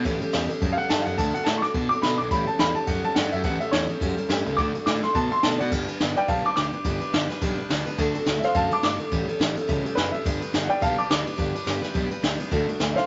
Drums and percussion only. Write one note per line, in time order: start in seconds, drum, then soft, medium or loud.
0.05 kick loud
0.05 ride medium
0.21 ride medium
0.33 snare loud
0.33 ride medium
0.50 ride medium
0.62 kick loud
0.62 ride loud
0.79 ride medium
0.90 snare loud
0.90 ride medium
1.06 ride medium
1.18 kick loud
1.18 ride medium
1.35 ride medium
1.46 snare loud
1.46 ride medium
1.63 snare soft
1.63 ride medium
1.74 kick loud
1.74 ride medium
1.91 ride medium
2.03 snare loud
2.03 ride medium
2.20 ride medium
2.31 kick loud
2.31 ride medium
2.47 ride medium
2.59 snare loud
2.59 ride medium
2.76 ride medium
2.87 kick loud
2.87 ride medium
3.04 ride medium
3.16 snare loud
3.16 ride medium
3.32 ride medium
3.43 kick loud
3.43 ride medium
3.60 ride medium
3.72 snare loud
3.72 ride medium
3.89 ride medium
4.01 kick loud
4.01 ride medium
4.18 ride medium
4.30 snare loud
4.30 ride medium
4.46 ride medium
4.58 kick loud
4.58 ride medium
4.75 ride medium
4.86 snare loud
4.86 ride medium
5.03 snare soft
5.03 ride medium
5.15 kick loud
5.15 ride medium
5.31 ride medium
5.43 snare loud
5.43 ride loud
5.60 ride medium
5.72 kick loud
5.72 crash loud
5.88 ride medium
6.00 snare loud
6.00 ride medium
6.16 ride medium
6.28 kick loud
6.28 ride medium
6.45 ride medium
6.56 snare loud
6.56 ride medium
6.73 ride medium
6.84 kick loud
6.84 ride medium
7.01 ride medium
7.14 snare loud
7.14 ride medium
7.30 snare soft
7.30 ride medium
7.41 kick loud
7.41 ride medium
7.58 ride medium
7.70 snare loud
7.70 ride loud
7.86 ride medium
7.98 kick loud
7.98 ride medium
8.15 ride medium
8.26 snare loud
8.26 ride medium
8.43 snare soft
8.43 ride medium
8.54 kick loud
8.54 ride medium
8.71 ride medium
8.83 snare loud
8.83 ride medium
9.00 ride medium
9.11 kick loud
9.11 ride medium
9.29 ride medium
9.41 snare loud
9.41 ride medium
9.57 ride medium
9.69 kick loud
9.69 ride medium
9.86 ride medium
9.97 snare loud
9.97 ride medium
10.14 ride medium
10.26 kick loud
10.26 ride loud
10.42 ride medium
10.54 snare loud
10.54 ride medium
10.71 ride medium
10.82 kick loud
10.82 ride medium
10.99 ride medium
11.10 snare loud
11.10 ride medium
11.27 ride medium
11.38 kick loud
11.38 ride medium
11.55 ride medium
11.67 snare loud
11.67 ride medium
11.83 snare soft
11.83 ride medium
11.95 kick loud
11.95 ride medium
12.11 ride medium
12.24 snare loud
12.24 ride medium
12.40 ride medium
12.52 kick loud
12.52 ride medium
12.69 ride medium
12.80 snare loud
12.80 ride medium
12.97 snare soft
12.97 ride medium